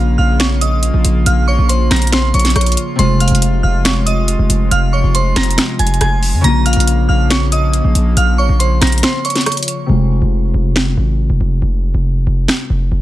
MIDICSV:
0, 0, Header, 1, 6, 480
1, 0, Start_track
1, 0, Key_signature, -4, "minor"
1, 0, Tempo, 431655
1, 1402, Time_signature, 4, 2, 24, 8
1, 14475, End_track
2, 0, Start_track
2, 0, Title_t, "Synth bell"
2, 0, Program_c, 0, 98
2, 0, Note_on_c, 0, 77, 76
2, 0, Note_on_c, 0, 89, 88
2, 173, Note_off_c, 0, 89, 0
2, 177, Note_off_c, 0, 77, 0
2, 200, Note_on_c, 0, 89, 83
2, 209, Note_on_c, 0, 77, 65
2, 385, Note_off_c, 0, 89, 0
2, 391, Note_off_c, 0, 77, 0
2, 445, Note_on_c, 0, 85, 82
2, 454, Note_on_c, 0, 73, 65
2, 629, Note_off_c, 0, 85, 0
2, 635, Note_off_c, 0, 73, 0
2, 682, Note_on_c, 0, 87, 81
2, 691, Note_on_c, 0, 75, 64
2, 1359, Note_off_c, 0, 87, 0
2, 1364, Note_off_c, 0, 75, 0
2, 1404, Note_on_c, 0, 89, 85
2, 1413, Note_on_c, 0, 77, 65
2, 1588, Note_off_c, 0, 89, 0
2, 1593, Note_off_c, 0, 77, 0
2, 1641, Note_on_c, 0, 85, 91
2, 1650, Note_on_c, 0, 73, 69
2, 1827, Note_off_c, 0, 85, 0
2, 1832, Note_off_c, 0, 73, 0
2, 1877, Note_on_c, 0, 84, 85
2, 1887, Note_on_c, 0, 72, 68
2, 2064, Note_off_c, 0, 84, 0
2, 2070, Note_off_c, 0, 72, 0
2, 2120, Note_on_c, 0, 82, 80
2, 2129, Note_on_c, 0, 94, 64
2, 2306, Note_off_c, 0, 82, 0
2, 2312, Note_off_c, 0, 94, 0
2, 2366, Note_on_c, 0, 84, 82
2, 2374, Note_on_c, 0, 72, 63
2, 2549, Note_off_c, 0, 84, 0
2, 2554, Note_off_c, 0, 72, 0
2, 2604, Note_on_c, 0, 85, 83
2, 2613, Note_on_c, 0, 73, 66
2, 2788, Note_off_c, 0, 85, 0
2, 2794, Note_off_c, 0, 73, 0
2, 2842, Note_on_c, 0, 85, 91
2, 2851, Note_on_c, 0, 73, 70
2, 3293, Note_off_c, 0, 85, 0
2, 3298, Note_off_c, 0, 73, 0
2, 3323, Note_on_c, 0, 84, 105
2, 3331, Note_on_c, 0, 72, 90
2, 3507, Note_off_c, 0, 84, 0
2, 3513, Note_off_c, 0, 72, 0
2, 3564, Note_on_c, 0, 89, 79
2, 3574, Note_on_c, 0, 77, 71
2, 4014, Note_off_c, 0, 89, 0
2, 4020, Note_off_c, 0, 77, 0
2, 4039, Note_on_c, 0, 89, 85
2, 4048, Note_on_c, 0, 77, 64
2, 4225, Note_off_c, 0, 89, 0
2, 4230, Note_off_c, 0, 77, 0
2, 4278, Note_on_c, 0, 85, 76
2, 4288, Note_on_c, 0, 73, 55
2, 4465, Note_off_c, 0, 85, 0
2, 4471, Note_off_c, 0, 73, 0
2, 4518, Note_on_c, 0, 87, 82
2, 4527, Note_on_c, 0, 75, 70
2, 5197, Note_off_c, 0, 87, 0
2, 5202, Note_off_c, 0, 75, 0
2, 5241, Note_on_c, 0, 89, 92
2, 5250, Note_on_c, 0, 77, 72
2, 5426, Note_off_c, 0, 89, 0
2, 5432, Note_off_c, 0, 77, 0
2, 5481, Note_on_c, 0, 85, 81
2, 5490, Note_on_c, 0, 73, 66
2, 5666, Note_off_c, 0, 85, 0
2, 5672, Note_off_c, 0, 73, 0
2, 5724, Note_on_c, 0, 84, 92
2, 5733, Note_on_c, 0, 72, 75
2, 5908, Note_off_c, 0, 84, 0
2, 5914, Note_off_c, 0, 72, 0
2, 5963, Note_on_c, 0, 82, 83
2, 5972, Note_on_c, 0, 94, 60
2, 6414, Note_off_c, 0, 82, 0
2, 6419, Note_off_c, 0, 94, 0
2, 6441, Note_on_c, 0, 80, 88
2, 6450, Note_on_c, 0, 92, 68
2, 6626, Note_off_c, 0, 80, 0
2, 6632, Note_off_c, 0, 92, 0
2, 6681, Note_on_c, 0, 80, 81
2, 6690, Note_on_c, 0, 92, 71
2, 7133, Note_off_c, 0, 80, 0
2, 7137, Note_off_c, 0, 92, 0
2, 7162, Note_on_c, 0, 82, 114
2, 7171, Note_on_c, 0, 94, 82
2, 7347, Note_off_c, 0, 82, 0
2, 7353, Note_off_c, 0, 94, 0
2, 7402, Note_on_c, 0, 89, 91
2, 7411, Note_on_c, 0, 77, 73
2, 7853, Note_off_c, 0, 89, 0
2, 7858, Note_off_c, 0, 77, 0
2, 7880, Note_on_c, 0, 89, 84
2, 7890, Note_on_c, 0, 77, 65
2, 8066, Note_off_c, 0, 89, 0
2, 8072, Note_off_c, 0, 77, 0
2, 8126, Note_on_c, 0, 85, 79
2, 8135, Note_on_c, 0, 73, 64
2, 8310, Note_off_c, 0, 85, 0
2, 8315, Note_off_c, 0, 73, 0
2, 8363, Note_on_c, 0, 87, 82
2, 8372, Note_on_c, 0, 75, 65
2, 9039, Note_off_c, 0, 87, 0
2, 9044, Note_off_c, 0, 75, 0
2, 9085, Note_on_c, 0, 89, 87
2, 9094, Note_on_c, 0, 77, 68
2, 9269, Note_off_c, 0, 89, 0
2, 9274, Note_off_c, 0, 77, 0
2, 9322, Note_on_c, 0, 85, 92
2, 9331, Note_on_c, 0, 73, 69
2, 9507, Note_off_c, 0, 85, 0
2, 9512, Note_off_c, 0, 73, 0
2, 9558, Note_on_c, 0, 84, 84
2, 9567, Note_on_c, 0, 72, 71
2, 9744, Note_off_c, 0, 84, 0
2, 9750, Note_off_c, 0, 72, 0
2, 9799, Note_on_c, 0, 82, 79
2, 9808, Note_on_c, 0, 94, 65
2, 9985, Note_off_c, 0, 82, 0
2, 9991, Note_off_c, 0, 94, 0
2, 10044, Note_on_c, 0, 84, 82
2, 10052, Note_on_c, 0, 72, 61
2, 10228, Note_off_c, 0, 84, 0
2, 10233, Note_off_c, 0, 72, 0
2, 10284, Note_on_c, 0, 85, 84
2, 10293, Note_on_c, 0, 73, 65
2, 10468, Note_off_c, 0, 85, 0
2, 10474, Note_off_c, 0, 73, 0
2, 10521, Note_on_c, 0, 85, 92
2, 10531, Note_on_c, 0, 73, 70
2, 10973, Note_off_c, 0, 85, 0
2, 10978, Note_off_c, 0, 73, 0
2, 14475, End_track
3, 0, Start_track
3, 0, Title_t, "Harp"
3, 0, Program_c, 1, 46
3, 0, Note_on_c, 1, 49, 70
3, 0, Note_on_c, 1, 58, 61
3, 0, Note_on_c, 1, 65, 74
3, 3279, Note_off_c, 1, 58, 0
3, 3287, Note_on_c, 1, 48, 64
3, 3296, Note_off_c, 1, 65, 0
3, 3323, Note_on_c, 1, 56, 61
3, 3358, Note_on_c, 1, 65, 76
3, 3378, Note_off_c, 1, 49, 0
3, 7128, Note_on_c, 1, 49, 68
3, 7136, Note_off_c, 1, 65, 0
3, 7164, Note_on_c, 1, 58, 60
3, 7200, Note_on_c, 1, 65, 78
3, 7218, Note_off_c, 1, 48, 0
3, 7218, Note_off_c, 1, 56, 0
3, 10959, Note_off_c, 1, 58, 0
3, 10967, Note_on_c, 1, 48, 62
3, 10977, Note_off_c, 1, 65, 0
3, 11002, Note_on_c, 1, 56, 59
3, 11038, Note_on_c, 1, 65, 75
3, 11058, Note_off_c, 1, 49, 0
3, 14475, Note_off_c, 1, 48, 0
3, 14475, Note_off_c, 1, 56, 0
3, 14475, Note_off_c, 1, 65, 0
3, 14475, End_track
4, 0, Start_track
4, 0, Title_t, "Analog synth pad"
4, 0, Program_c, 2, 89
4, 0, Note_on_c, 2, 49, 77
4, 0, Note_on_c, 2, 53, 80
4, 0, Note_on_c, 2, 58, 73
4, 0, Note_on_c, 2, 65, 86
4, 3284, Note_off_c, 2, 49, 0
4, 3284, Note_off_c, 2, 58, 0
4, 3324, Note_on_c, 2, 48, 78
4, 3324, Note_on_c, 2, 56, 73
4, 7118, Note_off_c, 2, 53, 0
4, 7125, Note_off_c, 2, 48, 0
4, 7125, Note_off_c, 2, 56, 0
4, 7163, Note_on_c, 2, 53, 73
4, 7164, Note_on_c, 2, 49, 80
4, 7164, Note_on_c, 2, 58, 72
4, 10958, Note_off_c, 2, 65, 0
4, 10964, Note_off_c, 2, 53, 0
4, 10965, Note_off_c, 2, 49, 0
4, 10965, Note_off_c, 2, 58, 0
4, 14475, End_track
5, 0, Start_track
5, 0, Title_t, "808-style bass"
5, 0, Program_c, 3, 38
5, 0, Note_on_c, 3, 34, 107
5, 188, Note_off_c, 3, 34, 0
5, 203, Note_on_c, 3, 34, 107
5, 1009, Note_off_c, 3, 34, 0
5, 1044, Note_on_c, 3, 34, 104
5, 1158, Note_off_c, 3, 34, 0
5, 1163, Note_on_c, 3, 34, 108
5, 1393, Note_off_c, 3, 34, 0
5, 1403, Note_on_c, 3, 34, 114
5, 1749, Note_off_c, 3, 34, 0
5, 1763, Note_on_c, 3, 34, 106
5, 2108, Note_off_c, 3, 34, 0
5, 2122, Note_on_c, 3, 34, 105
5, 2583, Note_off_c, 3, 34, 0
5, 2602, Note_on_c, 3, 34, 103
5, 2833, Note_off_c, 3, 34, 0
5, 2842, Note_on_c, 3, 34, 107
5, 3072, Note_off_c, 3, 34, 0
5, 3322, Note_on_c, 3, 29, 111
5, 3668, Note_off_c, 3, 29, 0
5, 3682, Note_on_c, 3, 29, 104
5, 4028, Note_off_c, 3, 29, 0
5, 4042, Note_on_c, 3, 29, 105
5, 4849, Note_off_c, 3, 29, 0
5, 4882, Note_on_c, 3, 29, 101
5, 4994, Note_off_c, 3, 29, 0
5, 5001, Note_on_c, 3, 29, 103
5, 5232, Note_off_c, 3, 29, 0
5, 5242, Note_on_c, 3, 29, 109
5, 5588, Note_off_c, 3, 29, 0
5, 5602, Note_on_c, 3, 29, 105
5, 5948, Note_off_c, 3, 29, 0
5, 5962, Note_on_c, 3, 29, 109
5, 6193, Note_off_c, 3, 29, 0
5, 6442, Note_on_c, 3, 29, 104
5, 6673, Note_off_c, 3, 29, 0
5, 6682, Note_on_c, 3, 29, 105
5, 7042, Note_on_c, 3, 41, 97
5, 7059, Note_off_c, 3, 29, 0
5, 7156, Note_off_c, 3, 41, 0
5, 7163, Note_on_c, 3, 34, 112
5, 7508, Note_off_c, 3, 34, 0
5, 7523, Note_on_c, 3, 34, 103
5, 7868, Note_off_c, 3, 34, 0
5, 7882, Note_on_c, 3, 34, 105
5, 8689, Note_off_c, 3, 34, 0
5, 8722, Note_on_c, 3, 34, 102
5, 8835, Note_off_c, 3, 34, 0
5, 8841, Note_on_c, 3, 34, 102
5, 9072, Note_off_c, 3, 34, 0
5, 9082, Note_on_c, 3, 34, 111
5, 9428, Note_off_c, 3, 34, 0
5, 9441, Note_on_c, 3, 34, 107
5, 9787, Note_off_c, 3, 34, 0
5, 9802, Note_on_c, 3, 34, 100
5, 10033, Note_off_c, 3, 34, 0
5, 11001, Note_on_c, 3, 29, 106
5, 11348, Note_off_c, 3, 29, 0
5, 11361, Note_on_c, 3, 29, 104
5, 11707, Note_off_c, 3, 29, 0
5, 11722, Note_on_c, 3, 29, 102
5, 12183, Note_off_c, 3, 29, 0
5, 12202, Note_on_c, 3, 32, 105
5, 12548, Note_off_c, 3, 32, 0
5, 12562, Note_on_c, 3, 29, 100
5, 12677, Note_off_c, 3, 29, 0
5, 12683, Note_on_c, 3, 29, 106
5, 12913, Note_off_c, 3, 29, 0
5, 12922, Note_on_c, 3, 29, 109
5, 13268, Note_off_c, 3, 29, 0
5, 13281, Note_on_c, 3, 29, 104
5, 13627, Note_off_c, 3, 29, 0
5, 13642, Note_on_c, 3, 29, 102
5, 13872, Note_off_c, 3, 29, 0
5, 14122, Note_on_c, 3, 29, 102
5, 14352, Note_off_c, 3, 29, 0
5, 14362, Note_on_c, 3, 29, 107
5, 14475, Note_off_c, 3, 29, 0
5, 14475, End_track
6, 0, Start_track
6, 0, Title_t, "Drums"
6, 442, Note_on_c, 9, 38, 117
6, 444, Note_on_c, 9, 42, 77
6, 452, Note_on_c, 9, 26, 94
6, 554, Note_off_c, 9, 38, 0
6, 555, Note_off_c, 9, 42, 0
6, 563, Note_off_c, 9, 26, 0
6, 683, Note_on_c, 9, 42, 73
6, 794, Note_off_c, 9, 42, 0
6, 920, Note_on_c, 9, 42, 69
6, 1031, Note_off_c, 9, 42, 0
6, 1163, Note_on_c, 9, 42, 87
6, 1274, Note_off_c, 9, 42, 0
6, 1404, Note_on_c, 9, 42, 73
6, 1515, Note_off_c, 9, 42, 0
6, 1884, Note_on_c, 9, 42, 76
6, 1995, Note_off_c, 9, 42, 0
6, 2123, Note_on_c, 9, 38, 92
6, 2123, Note_on_c, 9, 42, 58
6, 2133, Note_on_c, 9, 26, 72
6, 2183, Note_off_c, 9, 42, 0
6, 2183, Note_on_c, 9, 42, 61
6, 2234, Note_off_c, 9, 38, 0
6, 2243, Note_off_c, 9, 42, 0
6, 2243, Note_on_c, 9, 42, 61
6, 2244, Note_off_c, 9, 26, 0
6, 2304, Note_off_c, 9, 42, 0
6, 2304, Note_on_c, 9, 42, 62
6, 2363, Note_on_c, 9, 38, 123
6, 2365, Note_off_c, 9, 42, 0
6, 2365, Note_on_c, 9, 42, 80
6, 2372, Note_on_c, 9, 26, 94
6, 2474, Note_off_c, 9, 38, 0
6, 2476, Note_off_c, 9, 42, 0
6, 2484, Note_off_c, 9, 26, 0
6, 2603, Note_on_c, 9, 42, 57
6, 2663, Note_off_c, 9, 42, 0
6, 2663, Note_on_c, 9, 42, 57
6, 2722, Note_on_c, 9, 38, 71
6, 2723, Note_off_c, 9, 42, 0
6, 2723, Note_on_c, 9, 42, 59
6, 2783, Note_off_c, 9, 42, 0
6, 2783, Note_on_c, 9, 42, 57
6, 2833, Note_off_c, 9, 38, 0
6, 2843, Note_off_c, 9, 42, 0
6, 2843, Note_on_c, 9, 42, 57
6, 2844, Note_on_c, 9, 37, 90
6, 2903, Note_off_c, 9, 42, 0
6, 2903, Note_on_c, 9, 42, 60
6, 2955, Note_off_c, 9, 37, 0
6, 2963, Note_off_c, 9, 42, 0
6, 2963, Note_on_c, 9, 42, 60
6, 3023, Note_off_c, 9, 42, 0
6, 3023, Note_on_c, 9, 42, 59
6, 3083, Note_off_c, 9, 42, 0
6, 3083, Note_on_c, 9, 42, 95
6, 3194, Note_off_c, 9, 42, 0
6, 3324, Note_on_c, 9, 42, 72
6, 3435, Note_off_c, 9, 42, 0
6, 3563, Note_on_c, 9, 42, 63
6, 3643, Note_off_c, 9, 42, 0
6, 3643, Note_on_c, 9, 42, 61
6, 3723, Note_off_c, 9, 42, 0
6, 3723, Note_on_c, 9, 42, 59
6, 3804, Note_off_c, 9, 42, 0
6, 3804, Note_on_c, 9, 42, 77
6, 3915, Note_off_c, 9, 42, 0
6, 4282, Note_on_c, 9, 38, 116
6, 4283, Note_on_c, 9, 42, 77
6, 4291, Note_on_c, 9, 26, 98
6, 4393, Note_off_c, 9, 38, 0
6, 4394, Note_off_c, 9, 42, 0
6, 4402, Note_off_c, 9, 26, 0
6, 4522, Note_on_c, 9, 42, 74
6, 4633, Note_off_c, 9, 42, 0
6, 4760, Note_on_c, 9, 42, 71
6, 4871, Note_off_c, 9, 42, 0
6, 5002, Note_on_c, 9, 42, 87
6, 5113, Note_off_c, 9, 42, 0
6, 5242, Note_on_c, 9, 42, 71
6, 5354, Note_off_c, 9, 42, 0
6, 5723, Note_on_c, 9, 42, 77
6, 5835, Note_off_c, 9, 42, 0
6, 5962, Note_on_c, 9, 38, 92
6, 5962, Note_on_c, 9, 42, 58
6, 5972, Note_on_c, 9, 26, 76
6, 6042, Note_off_c, 9, 42, 0
6, 6042, Note_on_c, 9, 42, 60
6, 6074, Note_off_c, 9, 38, 0
6, 6083, Note_off_c, 9, 26, 0
6, 6122, Note_off_c, 9, 42, 0
6, 6122, Note_on_c, 9, 42, 61
6, 6202, Note_on_c, 9, 38, 117
6, 6204, Note_off_c, 9, 42, 0
6, 6204, Note_on_c, 9, 42, 77
6, 6212, Note_on_c, 9, 26, 95
6, 6313, Note_off_c, 9, 38, 0
6, 6315, Note_off_c, 9, 42, 0
6, 6323, Note_off_c, 9, 26, 0
6, 6442, Note_on_c, 9, 42, 70
6, 6523, Note_off_c, 9, 42, 0
6, 6523, Note_on_c, 9, 42, 58
6, 6602, Note_off_c, 9, 42, 0
6, 6602, Note_on_c, 9, 42, 40
6, 6682, Note_off_c, 9, 42, 0
6, 6682, Note_on_c, 9, 42, 68
6, 6684, Note_on_c, 9, 37, 90
6, 6793, Note_off_c, 9, 42, 0
6, 6795, Note_off_c, 9, 37, 0
6, 6923, Note_on_c, 9, 46, 66
6, 7034, Note_off_c, 9, 46, 0
6, 7164, Note_on_c, 9, 42, 72
6, 7275, Note_off_c, 9, 42, 0
6, 7403, Note_on_c, 9, 42, 62
6, 7483, Note_off_c, 9, 42, 0
6, 7483, Note_on_c, 9, 42, 62
6, 7564, Note_off_c, 9, 42, 0
6, 7564, Note_on_c, 9, 42, 61
6, 7645, Note_off_c, 9, 42, 0
6, 7645, Note_on_c, 9, 42, 79
6, 7756, Note_off_c, 9, 42, 0
6, 8123, Note_on_c, 9, 38, 119
6, 8125, Note_on_c, 9, 42, 79
6, 8132, Note_on_c, 9, 26, 95
6, 8234, Note_off_c, 9, 38, 0
6, 8236, Note_off_c, 9, 42, 0
6, 8244, Note_off_c, 9, 26, 0
6, 8363, Note_on_c, 9, 42, 76
6, 8474, Note_off_c, 9, 42, 0
6, 8601, Note_on_c, 9, 42, 70
6, 8712, Note_off_c, 9, 42, 0
6, 8843, Note_on_c, 9, 42, 88
6, 8954, Note_off_c, 9, 42, 0
6, 9083, Note_on_c, 9, 42, 70
6, 9194, Note_off_c, 9, 42, 0
6, 9564, Note_on_c, 9, 42, 76
6, 9675, Note_off_c, 9, 42, 0
6, 9803, Note_on_c, 9, 38, 91
6, 9803, Note_on_c, 9, 42, 62
6, 9813, Note_on_c, 9, 26, 75
6, 9864, Note_off_c, 9, 42, 0
6, 9864, Note_on_c, 9, 42, 58
6, 9915, Note_off_c, 9, 38, 0
6, 9923, Note_off_c, 9, 42, 0
6, 9923, Note_on_c, 9, 42, 59
6, 9924, Note_off_c, 9, 26, 0
6, 9983, Note_off_c, 9, 42, 0
6, 9983, Note_on_c, 9, 42, 61
6, 10042, Note_on_c, 9, 38, 119
6, 10044, Note_off_c, 9, 42, 0
6, 10044, Note_on_c, 9, 42, 77
6, 10052, Note_on_c, 9, 26, 96
6, 10154, Note_off_c, 9, 38, 0
6, 10155, Note_off_c, 9, 42, 0
6, 10163, Note_off_c, 9, 26, 0
6, 10284, Note_on_c, 9, 42, 59
6, 10343, Note_off_c, 9, 42, 0
6, 10343, Note_on_c, 9, 42, 57
6, 10402, Note_on_c, 9, 38, 72
6, 10403, Note_off_c, 9, 42, 0
6, 10403, Note_on_c, 9, 42, 58
6, 10463, Note_off_c, 9, 42, 0
6, 10463, Note_on_c, 9, 42, 57
6, 10514, Note_off_c, 9, 38, 0
6, 10523, Note_off_c, 9, 42, 0
6, 10523, Note_on_c, 9, 42, 58
6, 10524, Note_on_c, 9, 37, 86
6, 10583, Note_off_c, 9, 42, 0
6, 10583, Note_on_c, 9, 42, 58
6, 10635, Note_off_c, 9, 37, 0
6, 10644, Note_off_c, 9, 42, 0
6, 10644, Note_on_c, 9, 42, 59
6, 10704, Note_off_c, 9, 42, 0
6, 10704, Note_on_c, 9, 42, 59
6, 10763, Note_off_c, 9, 42, 0
6, 10763, Note_on_c, 9, 42, 95
6, 10875, Note_off_c, 9, 42, 0
6, 11963, Note_on_c, 9, 38, 115
6, 11972, Note_on_c, 9, 26, 93
6, 12074, Note_off_c, 9, 38, 0
6, 12083, Note_off_c, 9, 26, 0
6, 13882, Note_on_c, 9, 38, 114
6, 13892, Note_on_c, 9, 26, 90
6, 13993, Note_off_c, 9, 38, 0
6, 14003, Note_off_c, 9, 26, 0
6, 14475, End_track
0, 0, End_of_file